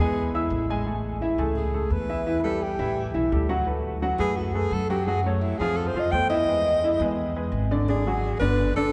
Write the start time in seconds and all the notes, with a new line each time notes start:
Already playing: G#4
0.00 E2 G#3 G#4 G#5
0.35 E4 E5 E6
0.50 A1
0.70 G#3 G#4 G#5
0.87 A3 G#4 A4
1.21 E3 E4 E5
1.38 C#2 A3 G#4 A4
1.57 G#4
1.74 A3 G#4 A4
1.90 E2 B4
2.09 E3 E4 E5
2.26 E3 E4 E5
2.44 G3 G4 A4 B4
2.63 G4
2.79 A1 E3 E4 E5
3.14 B1 E3 E4 E5
3.32 D2 G3 G4 A4
3.49 F#3 F#4 F#5
3.67 A3 A4 B4
4.02 F#3 F#4 F#5
4.19 F#2 A3 G#4 A4 B4
4.36 F#4
4.54 A3 G#4 A4 B4
4.71 F#2 A4
4.90 F#3 F#4 G4 F#5
5.07 F#3 F#4 G#4 F#5
5.23 A3 C#4 A4 C#5
5.41 E4
5.58 F2 F3 F4 G#4 F5
5.77 A4
5.87 C5
5.94 F2 F3 F4 F5
5.99 D#5
6.11 E2 A3 A4 C5 G5
6.30 E3 E4 D#5 E5
6.48 G#3 G#4 B4
6.84 E3 E4 E5
7.00 E2 G#3 G#4 B4
7.36 G#3 G#4 B4
7.52 G#1
7.71 D3 D4 D5
7.88 D3 D4 G#4 D5
8.07 F#3 F#4 G#4
8.39 G1 D3 D4 B4 D5
8.76 G1 D3 D4 A4 D5